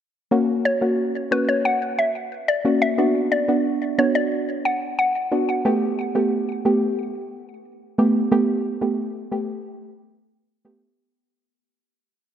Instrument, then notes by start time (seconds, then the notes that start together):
synth pluck
0.31 A#3 C#4 F#4
0.65 C#5
0.81 A#3 C#4 F#4
1.31 A#3 C#4 F#4 B4
1.49 C#5
1.65 F#5
1.99 E5
2.48 D5
2.65 A#3 C#4 F#4
2.82 E5
2.98 B3 D4 F#4
3.32 D5
3.48 B3 D4 F#4
3.98 B3 D4 F#4 C#5
4.15 D5
4.65 F#5
4.99 F#5
5.31 B3 D4 F#4
5.65 A3 B3 G4
6.15 A3 B3 G4
6.65 A3 B3 G4
7.98 A3 B3 G4
8.32 A3 B3 G4
8.81 A3 B3 G4
9.32 A3 B3 G4
10.65 A3 B3 G4